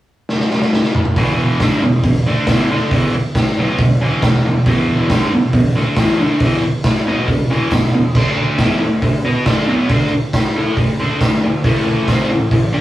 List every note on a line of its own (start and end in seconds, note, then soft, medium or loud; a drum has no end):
0.29 snare medium
0.40 snare medium
0.51 snare medium
0.62 snare medium
0.73 snare loud
0.84 snare medium
0.95 mid tom loud
1.05 mid tom loud
1.16 1.60 E2 medium
1.16 1.61 B2 loud
1.16 1.61 E3 loud
1.16 kick loud
1.16 open hi-hat medium
1.60 1.81 G2 medium
1.60 1.82 D3 medium
1.60 1.82 G3 loud
1.60 kick loud
1.60 snare loud
1.60 open hi-hat medium
1.60 tambourine medium
1.82 2.00 E2 medium
1.82 2.00 B2 medium
2.03 2.22 E2 medium
2.03 2.22 B2 medium
2.03 kick loud
2.03 open hi-hat medium
2.26 2.48 D3 medium
2.26 2.48 A3 loud
2.26 2.49 D4 loud
2.47 2.70 E2 loud
2.47 2.70 B2 loud
2.47 2.70 E3 loud
2.47 kick loud
2.47 snare loud
2.47 open hi-hat medium
2.47 tambourine loud
2.71 2.92 D3 medium
2.71 2.92 A3 medium
2.71 2.93 D4 loud
2.91 3.13 E2 medium
2.91 3.14 B2 loud
2.91 3.14 E3 loud
2.91 kick loud
2.91 open hi-hat medium
3.15 muted overdriven electric guitar stroke medium
3.35 kick loud
3.35 snare loud
3.35 open hi-hat medium
3.35 tambourine medium
3.58 3.79 B2 medium
3.58 3.79 F#3 loud
3.58 3.80 B3 loud
3.78 3.97 E2 medium
3.78 3.98 B2 medium
3.78 kick loud
3.78 open hi-hat medium
4.01 4.22 E2 loud
4.01 4.22 B2 loud
4.01 4.23 E3 loud
4.22 4.40 E2 medium
4.22 4.41 B2 medium
4.22 kick loud
4.22 snare loud
4.22 open hi-hat medium
4.22 tambourine loud
4.46 4.63 E2 medium
4.46 4.63 B2 medium
4.66 5.10 E2 medium
4.66 5.10 B2 loud
4.66 5.10 E3 loud
4.66 kick loud
4.66 open hi-hat medium
5.10 5.31 G2 loud
5.10 5.32 D3 medium
5.10 5.32 G3 medium
5.10 kick loud
5.10 snare loud
5.10 open hi-hat medium
5.10 tambourine medium
5.33 5.50 E2 medium
5.33 5.50 B2 medium
5.53 5.72 E2 medium
5.53 5.72 B2 medium
5.53 kick loud
5.53 open hi-hat medium
5.76 5.97 D3 loud
5.76 5.97 A3 loud
5.76 5.98 D4 loud
5.96 6.19 E2 loud
5.96 6.19 B2 loud
5.96 6.20 E3 loud
5.96 kick loud
5.96 snare loud
5.96 open hi-hat medium
5.96 tambourine loud
6.20 6.41 D3 medium
6.20 6.41 A3 medium
6.20 6.41 D4 loud
6.40 6.63 E2 loud
6.40 6.63 B2 loud
6.40 6.64 E3 loud
6.40 kick loud
6.40 open hi-hat medium
6.64 muted overdriven electric guitar stroke medium
6.84 kick loud
6.84 snare loud
6.84 open hi-hat medium
6.84 tambourine medium
7.07 7.28 B2 medium
7.07 7.29 F#3 medium
7.07 7.29 B3 loud
7.28 7.46 E2 medium
7.28 7.46 B2 medium
7.28 kick loud
7.28 open hi-hat medium
7.50 7.71 E2 medium
7.50 7.72 B2 loud
7.50 7.72 E3 loud
7.70 7.90 E2 medium
7.70 7.90 B2 medium
7.70 kick loud
7.70 snare loud
7.70 open hi-hat medium
7.70 tambourine loud
7.94 8.11 E2 medium
7.94 8.12 B2 medium
8.15 8.58 D3 loud
8.15 8.59 A3 loud
8.15 8.60 D4 loud
8.15 kick loud
8.15 crash loud
8.58 8.80 E3 medium
8.58 8.81 B3 medium
8.58 8.81 E4 medium
8.58 kick loud
8.58 snare loud
8.58 open hi-hat medium
8.58 tambourine loud
8.82 8.99 D3 medium
8.82 8.99 A3 medium
9.02 9.20 D3 medium
9.02 9.20 A3 medium
9.02 kick loud
9.02 open hi-hat medium
9.25 9.46 B3 medium
9.25 9.46 F#4 loud
9.25 9.46 B4 loud
9.46 9.67 D3 medium
9.46 9.68 A3 loud
9.46 9.68 D4 loud
9.46 kick loud
9.46 snare loud
9.46 open hi-hat medium
9.46 tambourine loud
9.67 9.88 B2 medium
9.67 9.89 F#3 medium
9.67 9.90 B3 medium
9.89 10.11 D3 medium
9.89 10.11 A3 loud
9.89 10.12 D4 loud
9.89 kick loud
9.89 open hi-hat medium
10.13 muted overdriven electric guitar stroke medium
10.33 kick loud
10.33 snare loud
10.33 open hi-hat medium
10.33 tambourine medium
10.56 10.77 A3 medium
10.56 10.78 E4 medium
10.56 10.78 A4 medium
10.77 10.96 D3 medium
10.77 10.96 A3 medium
10.77 kick loud
10.77 open hi-hat medium
11.00 11.20 D3 loud
11.00 11.20 A3 medium
11.00 11.21 D4 loud
11.21 11.39 D3 medium
11.21 11.39 A3 medium
11.21 kick loud
11.21 snare loud
11.21 open hi-hat medium
11.21 tambourine loud
11.44 11.61 D3 medium
11.44 11.61 A3 medium
11.64 12.08 A2 loud
11.64 12.08 E3 loud
11.64 12.08 A3 loud
11.64 kick loud
11.64 open hi-hat medium
12.08 12.29 C3 medium
12.08 12.30 G3 medium
12.08 12.30 C4 loud
12.08 kick loud
12.08 snare loud
12.08 open hi-hat medium
12.08 tambourine loud
12.31 12.48 A2 medium
12.31 12.48 E3 medium
12.51 12.69 A2 medium
12.51 12.70 E3 medium
12.51 kick loud
12.51 open hi-hat medium
12.73 12.81 G3 medium
12.73 12.81 D4 medium
12.73 12.81 G4 loud